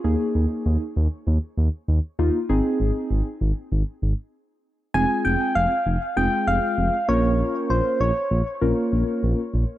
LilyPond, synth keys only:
\new Staff \with { instrumentName = "Synth keys" } { \time 4/4 \key f \minor \tempo 4 = 98 <bes ees' aes'>4. r2 <bes ees' f'>8 | <c' ees' aes'>4. r2 r8 | <aes c' f' aes'>4. r8 <aes c' f' aes'>4. <bes des' f' bes'>8~ | <bes des' f' bes'>4 r4 <bes des' f' bes'>4. r8 | }